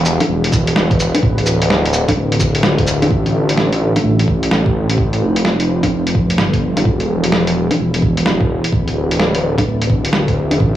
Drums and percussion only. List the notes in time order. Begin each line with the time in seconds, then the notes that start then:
0.06 cabasa
0.20 closed hi-hat, low bongo
0.44 closed hi-hat
0.52 kick, cabasa
0.67 closed hi-hat
0.76 snare
0.91 kick, closed hi-hat
1.00 cabasa
1.15 closed hi-hat, low bongo
1.23 kick
1.38 closed hi-hat
1.46 cabasa
1.62 closed hi-hat
1.70 snare
1.86 closed hi-hat
1.94 cabasa
2.08 kick, closed hi-hat, low bongo
2.32 closed hi-hat
2.40 kick, cabasa
2.55 closed hi-hat
2.63 snare
2.78 kick, closed hi-hat
2.87 cabasa
3.02 closed hi-hat, low bongo
3.11 kick
3.26 closed hi-hat
3.49 closed hi-hat
3.57 snare
3.72 closed hi-hat
3.96 closed hi-hat, low bongo
4.19 closed hi-hat
4.28 kick
4.43 closed hi-hat
4.51 snare
4.66 kick
4.90 closed hi-hat
4.98 kick
5.13 closed hi-hat
5.36 closed hi-hat
5.45 snare
5.60 closed hi-hat
5.83 kick, closed hi-hat, low bongo
6.07 closed hi-hat
6.15 kick
6.30 closed hi-hat
6.38 snare
6.53 kick, closed hi-hat
6.77 closed hi-hat, low bongo
6.85 kick
7.00 closed hi-hat
7.24 closed hi-hat
7.32 snare
7.47 closed hi-hat
7.71 closed hi-hat, low bongo
7.94 closed hi-hat
8.02 kick
8.17 closed hi-hat
8.26 snare
8.41 kick
8.64 closed hi-hat
8.72 kick
8.88 closed hi-hat
9.11 closed hi-hat
9.19 snare
9.35 closed hi-hat
9.58 kick, closed hi-hat, low bongo
9.82 closed hi-hat
9.90 kick
10.05 closed hi-hat
10.13 snare
10.28 kick, closed hi-hat
10.51 closed hi-hat, low bongo
10.60 kick